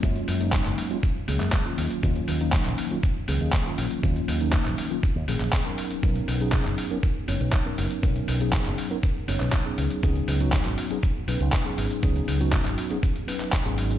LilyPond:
<<
  \new Staff \with { instrumentName = "Tine electric piano" } { \time 4/4 \key cis \mixolydian \tempo 4 = 120 <fis gis ais cis' eis'>8. <fis gis ais cis' dis'>4 <fis gis ais cis' eis'>16 r8 <fis gis ais cis' gis'>8. <dis fis ais cis' eis'>8. | <dis fis ais cis' eis'>8. <dis fis ais cis' dis'>4 <dis fis ais cis' eis'>16 r8 <dis fis ais cis' gis'>8. <dis fis ais cis' eis'>8. | <dis fis ais cis' eis'>8. <dis fis ais cis' dis'>4 <dis fis ais cis' eis'>16 r8 <dis fis ais cis' gis'>8. <fis b cis' dis' ais'>8. | <fis b cis' dis' ais'>8. <fis b cis' dis' gis'>4 <fis b cis' dis' ais'>16 r8 <fis b cis' dis' cis''>8. <fis b cis' dis' ais'>8. |
<fis b cis' dis' ais'>8. <fis b cis' dis' gis'>4 <fis b cis' dis' ais'>16 r8 <fis b cis' dis' cis''>8. <fis b cis' dis' gis'>8. | <fis b cis' dis' gis'>8. <fis b cis' dis' fis'>4 <fis b cis' dis' gis'>16 r8 <fis b cis' dis' b'>8. <fis b cis' dis' gis'>8. | <fis b cis' dis' gis'>8. <fis b cis' dis' fis'>4 <fis b cis' dis' gis'>16 r8 <fis b cis' dis' b'>8. <fis b cis' dis' gis'>8. | }
  \new Staff \with { instrumentName = "Fingered electric bass" } { \clef bass \time 4/4 \key cis \mixolydian fis,16 r16 fis,8 r16 fis,,16 r4 cis,16 fis,16 r8 dis,16 r16 | dis,16 r16 dis,8 r16 ais,,16 r4 cis,16 dis,16 r8 ais,,16 r16 | dis,16 r16 dis,8 r16 ais,,16 r8. dis,16 ais,,16 ais,,16 r4 | b,,16 r16 b,,8 r16 fis,,16 r4 fis,,16 b,,16 r8 fis,,16 r16 |
b,,16 r16 b,,8 r16 fis,,16 r4 fis,,16 b,,16 r8 cis,16 r16 | cis,16 r16 cis,8 r16 gis,,16 r4 b,,16 cis,16 r8 gis,,16 r16 | cis,16 r16 cis,8 r16 gis,,16 r4. r16 gis,,8 r16 | }
  \new DrumStaff \with { instrumentName = "Drums" } \drummode { \time 4/4 <hh bd>16 hh16 hho16 hh16 <hc hh bd>16 hc16 hho16 hh16 <hh bd>8 hho16 <hc hh>16 <hc hh bd>8 hho16 hh16 | <hh bd>16 hh16 hho16 hh16 <hc hh bd>16 hc16 hho16 hh16 <hh bd>8 hho16 hh16 <hc hh bd>8 hho16 hh16 | <hh bd>16 hh16 hho16 hh16 <hc hh bd>16 hc16 hho16 hh16 <hh bd>8 hho16 <hc hh>16 <hc hh bd>8 hho16 hh16 | <hh bd>16 hh16 hho16 hh16 <hc hh bd>16 hc16 hho16 hh16 <hh bd>8 hho16 hh16 <hc hh bd>8 hho16 hh16 |
<hh bd>16 hh16 hho16 hh16 <hc hh bd>16 hc16 hho16 hh16 <hh bd>8 hho16 hc16 <hc hh bd>8 hho16 hh16 | <hh bd>16 hh16 hho16 hh16 <hc hh bd>16 hc16 hho16 hh16 <hh bd>8 hho16 hh16 <hc hh bd>8 hho16 hh16 | <hh bd>16 hh16 hho16 hh16 <hc hh bd>16 <hc hh>16 hho16 hh16 <hh bd>16 hh16 hho16 <hc hh>16 <hc hh bd>16 hh16 hho16 hh16 | }
>>